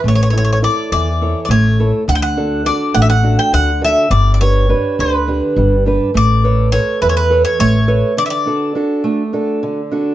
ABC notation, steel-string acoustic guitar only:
X:1
M:7/8
L:1/8
Q:1/4=103
K:D
V:1 name="Steel-string acoustic guitar"
A, [EAc] [EAc] E, [EAc] A, [EAc] | D, [DFA] [DFA] A, [DFA] D, [DFA] | G, [DGB] [DGB] D, [DGB] G, [DGB] | A, [ABc] [ABc] E, [ABc] A, [ABc] |
D, [DFA] [DFA] A, [DFA] D, [DFA] |]